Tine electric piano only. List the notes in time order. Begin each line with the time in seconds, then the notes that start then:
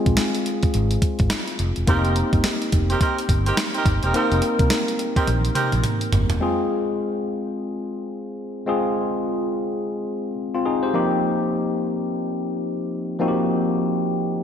Already playing: G#3 C4 F4 G#4
1.87 A#3 C4 D#4 G4
4.13 A#3 C4 D#4 A#4
6.40 G#3 C4 F4 G#4
8.66 G#3 C4 F4 G#4
10.55 C4 F4
10.66 D#4 G#4
10.83 G4 C5
10.93 F3 A#3 C4 D#4 G4
13.19 F3 A#3 C4 D#4 F#4
13.28 G4